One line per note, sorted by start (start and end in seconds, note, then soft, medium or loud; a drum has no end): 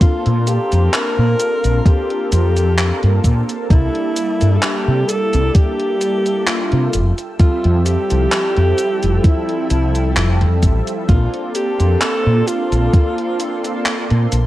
0.00 6.90 A#3 medium
0.00 0.66 A#3 medium
0.00 0.66 C4 medium
0.00 0.66 D4 medium
0.00 0.66 F4 medium
0.00 0.49 F4 loud
0.00 0.66 A4 medium
0.00 3.67 F5 medium
0.00 6.90 A5 medium
0.00 3.66 C6 medium
0.00 muted fretless electric bass stroke soft
0.00 kick loud
0.00 closed hi-hat medium
0.00 cabasa soft
0.26 0.57 A#2 medium
0.26 closed hi-hat soft
0.47 0.95 G4 loud
0.47 closed hi-hat medium
0.47 cabasa medium
0.70 0.87 F2 medium
0.70 2.50 A#3 medium
0.70 2.50 C4 medium
0.70 2.51 D4 medium
0.70 2.51 F4 medium
0.70 2.51 A#4 loud
0.70 closed hi-hat medium
0.70 cabasa soft
0.94 1.87 A#4 loud
0.94 clap loud
0.94 closed hi-hat medium
0.94 cabasa soft
1.18 1.33 A#2 loud
1.40 closed hi-hat medium
1.40 cabasa medium
1.64 1.79 A#1 loud
1.64 closed hi-hat medium
1.64 cabasa soft
1.86 2.32 G4 loud
1.86 kick loud
1.86 closed hi-hat medium
1.86 cabasa soft
2.10 closed hi-hat soft
2.32 2.90 F2 loud
2.32 3.21 G4 loud
2.32 closed hi-hat medium
2.32 cabasa medium
2.55 3.64 A#3 medium
2.55 3.65 C4 medium
2.55 3.65 D4 medium
2.55 3.66 F4 medium
2.55 3.66 A4 medium
2.55 closed hi-hat medium
2.55 cabasa soft
2.78 clap loud
2.78 closed hi-hat medium
2.78 cabasa soft
3.03 3.18 G2 loud
3.03 closed hi-hat soft
3.24 3.41 A#2 loud
3.24 kick medium
3.24 closed hi-hat medium
3.24 cabasa medium
3.49 closed hi-hat medium
3.49 cabasa soft
3.69 3.87 C2 loud
3.69 4.35 G3 medium
3.69 4.35 A#3 medium
3.69 4.35 D4 medium
3.69 4.35 E4 medium
3.69 4.58 E4 loud
3.69 4.35 A4 loud
3.69 6.90 E5 medium
3.69 6.90 D6 medium
3.69 kick loud
3.69 closed hi-hat medium
3.69 cabasa soft
3.95 closed hi-hat soft
4.16 closed hi-hat medium
4.16 cabasa medium
4.39 4.56 G2 medium
4.39 6.19 G3 loud
4.39 6.19 A#3 medium
4.39 6.20 D4 medium
4.39 6.20 E4 medium
4.39 6.20 A4 loud
4.39 closed hi-hat medium
4.39 cabasa soft
4.56 4.64 A4 medium
4.62 5.10 G4 loud
4.62 clap loud
4.62 closed hi-hat medium
4.62 cabasa soft
4.88 5.02 C3 loud
5.09 5.56 A4 loud
5.09 closed hi-hat medium
5.09 cabasa medium
5.33 5.48 C2 loud
5.33 closed hi-hat medium
5.33 cabasa soft
5.55 6.49 G4 loud
5.55 kick loud
5.55 closed hi-hat medium
5.55 cabasa soft
5.80 closed hi-hat soft
6.01 closed hi-hat medium
6.01 cabasa medium
6.25 6.91 G3 medium
6.25 6.91 A#3 medium
6.25 6.91 D4 medium
6.25 6.91 A4 loud
6.25 6.91 E5 medium
6.25 closed hi-hat medium
6.25 cabasa soft
6.47 7.18 F4 loud
6.47 clap loud
6.47 closed hi-hat medium
6.47 cabasa soft
6.72 6.87 C3 loud
6.72 closed hi-hat soft
6.93 7.11 F1 loud
6.93 11.05 A4 medium
6.93 11.05 G5 medium
6.93 11.05 E6 medium
6.93 closed hi-hat medium
6.93 cabasa medium
7.18 closed hi-hat medium
7.18 cabasa soft
7.39 8.04 G3 medium
7.39 8.04 C4 medium
7.39 7.87 F4 loud
7.39 8.05 F4 medium
7.39 8.05 A4 loud
7.39 8.04 E5 medium
7.39 muted fretless electric bass stroke soft
7.39 kick loud
7.39 closed hi-hat medium
7.39 cabasa soft
7.64 7.95 F2 medium
7.64 closed hi-hat soft
7.85 9.26 G4 loud
7.85 closed hi-hat medium
7.85 cabasa medium
8.09 8.26 C2 medium
8.09 9.90 F3 medium
8.09 9.88 G3 medium
8.09 9.89 C4 medium
8.09 9.89 E4 medium
8.09 9.90 A4 loud
8.09 closed hi-hat medium
8.09 cabasa soft
8.32 clap loud
8.32 closed hi-hat medium
8.32 cabasa soft
8.57 8.72 F2 loud
8.57 closed hi-hat soft
8.78 closed hi-hat medium
8.78 cabasa medium
9.03 9.18 F1 loud
9.03 closed hi-hat medium
9.03 cabasa soft
9.24 10.63 E4 medium
9.24 kick loud
9.24 closed hi-hat medium
9.24 cabasa soft
9.49 closed hi-hat soft
9.70 10.16 C2 loud
9.70 closed hi-hat medium
9.70 cabasa medium
9.94 11.04 F3 medium
9.94 11.03 G3 medium
9.94 11.03 C4 medium
9.94 11.04 E4 medium
9.94 11.04 A4 medium
9.94 closed hi-hat medium
9.94 cabasa soft
10.17 10.43 F1 loud
10.17 clap loud
10.17 closed hi-hat medium
10.17 cabasa soft
10.41 10.64 F2 medium
10.41 closed hi-hat soft
10.63 10.80 A1 medium
10.63 kick medium
10.63 closed hi-hat medium
10.63 cabasa medium
10.87 closed hi-hat soft
10.87 cabasa soft
11.08 11.26 A#1 loud
11.08 11.73 A#3 medium
11.08 14.47 A#3 medium
11.08 11.74 C4 medium
11.08 11.74 D4 medium
11.08 11.52 F4 loud
11.08 11.74 F4 medium
11.08 11.74 A4 medium
11.08 14.29 D5 medium
11.08 14.47 A5 medium
11.08 14.47 C6 medium
11.08 kick loud
11.08 closed hi-hat medium
11.08 cabasa soft
11.34 closed hi-hat soft
11.55 12.03 G4 loud
11.55 closed hi-hat medium
11.55 cabasa medium
11.78 11.94 F2 medium
11.78 13.58 A#3 medium
11.78 13.58 C4 medium
11.78 13.59 D4 medium
11.78 13.59 F4 medium
11.78 13.59 A4 loud
11.78 closed hi-hat medium
11.78 cabasa soft
12.01 12.49 A4 loud
12.01 clap loud
12.01 closed hi-hat medium
12.01 cabasa soft
12.26 12.41 A#2 medium
12.47 14.32 F4 loud
12.47 closed hi-hat medium
12.47 cabasa medium
12.72 12.87 A#1 loud
12.72 closed hi-hat medium
12.72 cabasa soft
12.93 kick loud
12.93 closed hi-hat medium
12.93 cabasa soft
13.18 closed hi-hat soft
13.40 closed hi-hat medium
13.40 cabasa medium
13.64 14.29 A#3 medium
13.64 14.29 C4 medium
13.64 14.30 D4 medium
13.64 14.30 F4 medium
13.64 14.30 A4 loud
13.64 closed hi-hat medium
13.64 cabasa soft
13.86 clap loud
13.86 closed hi-hat medium
13.86 cabasa soft
14.10 14.25 A#2 loud
14.10 closed hi-hat soft
14.32 14.47 A#1 medium
14.32 14.47 F5 medium
14.32 closed hi-hat medium
14.32 cabasa medium